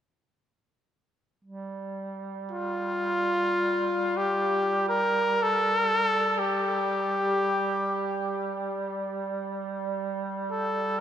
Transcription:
1.44 duduk G3
2.52 trumpet F4
4.17 trumpet G4
4.89 trumpet A#4
5.43 trumpet A4
6.39 trumpet G4
10.52 trumpet A4

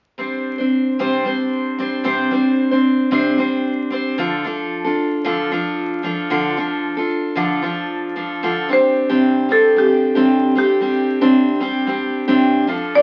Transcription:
0.18 steel-string acoustic guitar G3 C4 D4 C5
0.58 steel-string acoustic guitar C4 D4 C5
0.99 steel-string acoustic guitar C3 G3 C4 D4 C5
1.25 steel-string acoustic guitar G3 C4 D4 C5
1.78 steel-string acoustic guitar G3 C4 D4 C5
2.04 steel-string acoustic guitar C3 G3 C4 D4 C5
2.31 steel-string acoustic guitar G3 C4 D4 C5
2.71 steel-string acoustic guitar C4 D4 C5
3.11 steel-string acoustic guitar C3 G3 C4 D4 C5
3.38 steel-string acoustic guitar G3 C4 D4 C5
3.90 steel-string acoustic guitar G3 C4 D4 C5
4.18 steel-string acoustic guitar D3 F3 D4 F4 A4
4.44 steel-string acoustic guitar F3 D4 F4 A4
4.84 steel-string acoustic guitar D4 F4 A4
5.24 steel-string acoustic guitar D3 F3 D4 F4 A4
5.51 steel-string acoustic guitar F3 D4 F4 A4
6.03 steel-string acoustic guitar F3 D4 F4 A4
6.30 steel-string acoustic guitar D3 F3 D4 F4 A4
6.57 steel-string acoustic guitar F3 D4 F4 A4
6.97 steel-string acoustic guitar D4 F4 A4
7.35 steel-string acoustic guitar D3 F3 D4 F4 A4
7.62 steel-string acoustic guitar F3 D4 F4 A4
8.16 steel-string acoustic guitar F3 D4 F4 A4
8.43 steel-string acoustic guitar D3 F3 D4 F4 A4
8.69 steel-string acoustic guitar G3 C4 D4 G4
8.73 marimba C5
9.09 steel-string acoustic guitar C3 G3 C4 D4 G4
9.49 steel-string acoustic guitar G3 C4 D4 G4, marimba A4
9.76 steel-string acoustic guitar G3 C4 D4 G4, marimba G4
10.15 steel-string acoustic guitar C3 G3 C4 D4 G4
10.55 steel-string acoustic guitar G3 C4 D4 G4, marimba G4
10.81 steel-string acoustic guitar G3 C4 D4 G4
11.21 steel-string acoustic guitar C3 G3 C4 D4 G4
11.60 steel-string acoustic guitar G3 C4 D4 G4
11.87 steel-string acoustic guitar G3 C4 D4 G4
12.28 steel-string acoustic guitar C3 G3 C4 D4 G4
12.67 steel-string acoustic guitar F3 D4 F4 A4
12.95 steel-string acoustic guitar F3 D4 F4 A4, marimba D5

